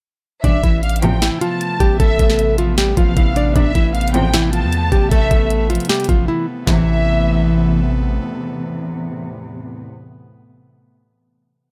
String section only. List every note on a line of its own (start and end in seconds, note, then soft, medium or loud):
0.44 0.53 C2 medium
0.44 0.53 B2 medium
0.44 0.53 E3 medium
1.02 1.19 A1 loud
1.02 1.19 E2 medium
1.02 1.19 C3 loud
3.56 3.64 A1 medium
3.56 3.64 E2 medium
3.56 3.64 C3 medium
4.14 4.31 A1 loud
4.14 4.31 E2 loud
4.14 4.31 C3 loud
6.67 9.85 A1 medium
6.67 9.85 E2 medium
6.67 9.85 C3 loud